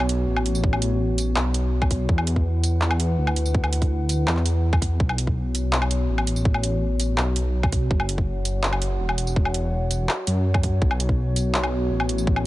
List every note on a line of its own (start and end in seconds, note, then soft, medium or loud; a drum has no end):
0.00 0.26 B1 loud
0.00 2.06 B3 medium
0.00 2.06 F#4 medium
0.00 2.05 C#5 medium
0.00 low woodblock medium
0.09 closed hi-hat medium
0.27 1.35 A1 loud
0.37 low woodblock medium
0.46 closed hi-hat medium
0.55 tambourine soft
0.64 kick loud
0.73 low woodblock medium
0.82 closed hi-hat medium
1.18 closed hi-hat medium
1.18 tambourine medium
1.36 2.08 B1 loud
1.36 clap loud
1.36 low woodblock medium
1.54 closed hi-hat medium
1.82 kick loud
1.82 low woodblock medium
1.91 kick medium
1.91 closed hi-hat medium
2.09 3.17 E2 loud
2.09 4.97 E4 medium
2.09 4.97 B4 medium
2.09 4.97 F#5 medium
2.09 kick loud
2.18 low woodblock medium
2.27 closed hi-hat medium
2.36 kick medium
2.64 closed hi-hat medium
2.64 tambourine medium
2.81 clap loud
2.91 low woodblock medium
3.00 closed hi-hat medium
3.18 4.26 D2 loud
3.27 low woodblock medium
3.36 closed hi-hat medium
3.46 tambourine soft
3.55 kick loud
3.64 low woodblock medium
3.73 closed hi-hat medium
3.82 kick medium
3.82 closed hi-hat soft
4.09 closed hi-hat medium
4.09 tambourine medium
4.28 4.99 E2 medium
4.28 clap loud
4.28 low woodblock medium
4.37 clap soft
4.46 closed hi-hat medium
4.46 tambourine soft
4.73 kick loud
4.73 low woodblock medium
4.82 kick medium
4.82 closed hi-hat medium
5.00 6.08 B1 loud
5.00 7.88 B3 medium
5.00 10.78 F#4 medium
5.00 7.88 C#5 medium
5.00 kick loud
5.09 low woodblock medium
5.18 closed hi-hat medium
5.27 kick medium
5.55 closed hi-hat medium
5.55 tambourine medium
5.73 clap loud
5.82 low woodblock medium
5.91 closed hi-hat medium
6.09 7.17 A1 loud
6.18 low woodblock medium
6.27 closed hi-hat medium
6.36 tambourine soft
6.45 kick loud
6.54 low woodblock medium
6.64 closed hi-hat medium
7.00 closed hi-hat medium
7.00 tambourine medium
7.18 7.89 B1 loud
7.18 clap loud
7.18 low woodblock medium
7.36 closed hi-hat medium
7.63 kick loud
7.63 low woodblock medium
7.72 kick medium
7.72 closed hi-hat medium
7.91 8.98 F#1 loud
7.91 12.47 C#5 medium
7.91 10.79 F#5 medium
7.91 kick loud
8.00 low woodblock medium
8.09 closed hi-hat medium
8.18 kick medium
8.45 closed hi-hat medium
8.45 tambourine medium
8.63 clap loud
8.73 low woodblock medium
8.82 closed hi-hat medium
9.00 10.08 E1 loud
9.09 low woodblock medium
9.18 closed hi-hat medium
9.27 tambourine soft
9.36 kick loud
9.45 low woodblock medium
9.54 closed hi-hat medium
9.91 closed hi-hat medium
9.91 tambourine medium
10.09 clap loud
10.09 low woodblock soft
10.27 10.80 F#2 loud
10.27 closed hi-hat medium
10.54 kick loud
10.54 low woodblock medium
10.63 kick medium
10.63 closed hi-hat medium
10.82 11.89 B1 medium
10.82 12.47 B3 medium
10.82 12.47 F#4 medium
10.82 kick loud
10.91 low woodblock medium
11.00 closed hi-hat medium
11.09 kick medium
11.36 closed hi-hat medium
11.36 tambourine medium
11.54 clap loud
11.64 low woodblock medium
11.91 12.47 A1 loud
12.00 low woodblock medium
12.09 closed hi-hat medium
12.18 tambourine soft
12.27 kick loud
12.36 low woodblock medium